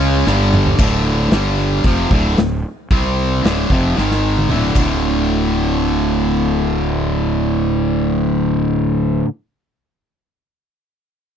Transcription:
Already playing: C#2 C#3 G#3 C#4
0.27 G1 G2 D3 G3, snare
0.54 mid tom
0.66 floor tom
0.79 D1 D2 A2 D3, kick, crash
1.31 G1 G2 D3 G3, snare, open hi-hat
1.59 snare
1.84 F1 F2 C3 F3, kick, open hi-hat
2.10 D1 D2 A2 D3, kick
2.38 D1 D2 A2, snare, open hi-hat
2.91 C2 C3 G3 C4, kick, open hi-hat
3.43 D1 D2 A2 D3, snare, open hi-hat
3.70 F1 F2 C3 F3, kick
3.96 G#1 G#2 D#3 G#3, snare
4.11 snare
4.38 high tom
4.49 D1 D2 A2 D3, mid tom
4.75 D1 D2 A2, kick, crash
4.80 D3

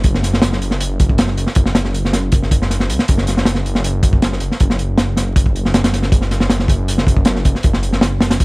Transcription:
0.04 F#1, kick, closed hi-hat
0.14 snare
0.22 snare, closed hi-hat
0.33 snare
0.42 snare, closed hi-hat
0.52 snare
0.61 F#1, closed hi-hat
0.71 snare
0.80 closed hi-hat
1.00 F#1, kick, closed hi-hat
1.09 kick
1.18 snare, closed hi-hat
1.27 snare
1.37 F#1, closed hi-hat
1.47 snare
1.55 F#1, kick, closed hi-hat
1.66 snare
1.75 snare, closed hi-hat
1.85 snare
1.94 closed hi-hat
2.05 snare
2.13 F#1, snare, closed hi-hat
2.32 F#1, kick, closed hi-hat
2.42 snare
2.51 kick, closed hi-hat
2.62 snare
2.70 snare, closed hi-hat
2.80 snare
2.89 C#2, closed hi-hat
2.99 snare
3.08 F#1, kick, closed hi-hat
3.18 snare
3.27 snare, closed hi-hat
3.37 snare
3.45 snare, closed hi-hat
3.55 snare
3.65 F#1, closed hi-hat
3.75 snare
3.84 closed hi-hat
4.03 F#1, kick, closed hi-hat
4.13 kick
4.22 snare, closed hi-hat
4.32 snare
4.40 F#1, closed hi-hat
4.51 snare
4.60 F#1, kick, closed hi-hat
4.70 snare
4.79 closed hi-hat
4.98 snare, closed hi-hat
5.17 F#1, snare, closed hi-hat
5.36 F#1, kick, closed hi-hat
5.46 kick
5.56 closed hi-hat
5.65 snare
5.74 snare, closed hi-hat
5.84 snare, closed hi-hat
5.93 snare, closed hi-hat
6.03 snare
6.12 F#1, kick, closed hi-hat
6.21 snare
6.31 snare, closed hi-hat
6.40 snare
6.50 snare, closed hi-hat
6.59 snare
6.68 F#1, kick, closed hi-hat
6.88 closed hi-hat
6.98 snare
7.07 F#1, kick, closed hi-hat
7.17 kick
7.25 snare, closed hi-hat
7.36 snare
7.45 F#1, kick, closed hi-hat
7.55 snare
7.63 F#1, kick, closed hi-hat
7.73 snare
7.83 closed hi-hat
7.93 snare
8.01 snare, closed hi-hat
8.21 F#1, snare, closed hi-hat
8.30 snare, closed hi-hat
8.40 F#1, kick, closed hi-hat

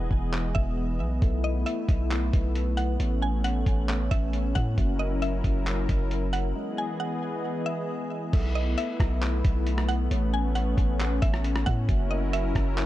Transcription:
Already playing: E3 G#3 B3 E4 G#4 D#5 F#5
0.11 E1, kick
0.34 clap
0.55 E1 E5, kick
1.00 B1
1.22 B1 A3 B3 E4 A4 E5, kick, closed hi-hat
1.44 D#5
1.66 E5, closed hi-hat
1.89 B1, kick, closed hi-hat
2.11 clap, closed hi-hat
2.33 B1, kick, closed hi-hat
2.55 closed hi-hat
2.77 F#5, closed hi-hat
3.00 A1 A3 C#4 A4 C#5, closed hi-hat
3.22 G#5
3.44 F#5, closed hi-hat
3.66 A1, kick, closed hi-hat
3.89 clap, closed hi-hat
4.11 A1 E5, kick, closed hi-hat
4.33 closed hi-hat
4.55 A2 F#5, kick, closed hi-hat
4.78 F#1 F#3 A#3 E4 F#4 A#4 E5, kick, closed hi-hat
4.99 D#5
5.22 E5, closed hi-hat
5.44 F#1, kick, closed hi-hat
5.67 clap, closed hi-hat
5.89 F#1, kick, closed hi-hat
6.11 closed hi-hat
6.33 F#5, closed hi-hat
6.55 E3 G#3 B3 E4 G#4 D#5
6.78 G#5
7.00 F#5
7.66 E5
8.33 B1 A3 B3 E4 A4 E5, kick, closed hi-hat, crash
8.55 D#5
8.78 E5, closed hi-hat
9.00 B1, kick, cross-stick, closed hi-hat
9.22 clap, closed hi-hat
9.45 B1, kick, closed hi-hat
9.67 closed hi-hat
9.78 cross-stick
9.89 F#5, closed hi-hat
10.11 A1 C#4 C#5, closed hi-hat
10.34 G#5
10.55 F#5, closed hi-hat
10.78 A1, kick, closed hi-hat
11.00 clap, closed hi-hat
11.22 A1 E5, kick, closed hi-hat
11.34 cross-stick
11.44 closed hi-hat
11.56 cross-stick
11.66 A2 F#5, kick, closed hi-hat
11.89 F#1 F#3 A#3 E4 F#4 A#4 E5, kick, closed hi-hat
12.11 D#5
12.33 E5, closed hi-hat
12.55 F#1, kick, cross-stick, closed hi-hat
12.78 clap, closed hi-hat

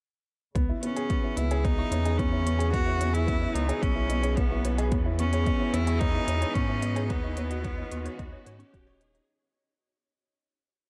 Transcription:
0.55 C#2 C#3 B3 C#5, kick, closed hi-hat, riser
0.69 E4 D#5
0.75 E3
0.82 B3 C#4 C#5, closed hi-hat
0.93 C#4 G#4 C#5, closed hi-hat
1.10 B3 C#6, kick, closed hi-hat
1.24 E4 C#5
1.36 C#2 B3 E4 D#5, closed hi-hat
1.51 G#4 C#5, closed hi-hat
1.64 B3 D#4 C#5, kick, closed hi-hat
1.78 E4 C#6
1.86 B4
1.91 E2 B3 C#5, closed hi-hat
2.05 G#4 D#5, closed hi-hat
2.17 B3 C#4 C#5, kick, closed hi-hat
2.32 E4 C#5
2.46 B3 C#6, closed hi-hat
2.59 G#4 C#5, closed hi-hat
2.72 B3 F#4 D#5, kick, closed hi-hat
2.86 E4 C#5
3.00 B3 C#5, closed hi-hat
3.13 E4 G#4 C#6, closed hi-hat
3.27 B3 C#5, kick, closed hi-hat
3.41 E4 D#5
3.54 C#2 B3 D#4 C#5, closed hi-hat
3.69 G#4 C#5, closed hi-hat
3.82 B1 B3 C#4 C#6, kick, closed hi-hat
3.95 E4 C#5
4.09 B3 D#5, closed hi-hat
4.23 G#4 C#5, closed hi-hat
4.37 B3 C#5, kick, closed hi-hat
4.50 E4 C#6
4.64 B3 C#5, closed hi-hat
4.78 G#4 D#5, closed hi-hat
4.91 E2 E3 B3 C#5, kick, closed hi-hat
5.05 B3 E4 C#5
5.18 B3 C#4 C#6, closed hi-hat
5.30 G#4 C#5, closed hi-hat
5.46 B3 D#5, kick, closed hi-hat
5.59 E4 C#5
5.73 E2 B3 E4 C#5, closed hi-hat
5.87 G#4 D#5 C#6, closed hi-hat
6.00 B3 D#4 C#5, kick, closed hi-hat
6.14 E4 D#5
6.27 E2 B3 C#5, closed hi-hat
6.42 G#4 C#5, closed hi-hat
6.54 G#2 B3 C#4 C#6, kick, closed hi-hat
6.68 E4 C#5
6.82 B3 D#5, closed hi-hat
6.96 G#4 C#5, closed hi-hat
7.08 D#2 D#3 B3 C#5, kick, closed hi-hat
7.23 D#4 C#6
7.37 B3 C#5, closed hi-hat
7.50 F#4 D#5, closed hi-hat
7.64 B3 C#5, kick, closed hi-hat
7.77 D#4 C#5
7.91 D#2 B3 C#6, closed hi-hat
8.05 C#4 F#4 C#5, closed hi-hat
8.17 D#2 B3 D#5, kick, closed hi-hat
8.31 D#4 C#5
8.45 G#2 F#4 C#5, closed hi-hat
8.59 C#4 C#6, closed hi-hat
8.73 D#1 F#4 C#5, kick, closed hi-hat
8.87 C#5 D#5
9.00 D#4 C#5, closed hi-hat
9.14 D#4 C#5, closed hi-hat

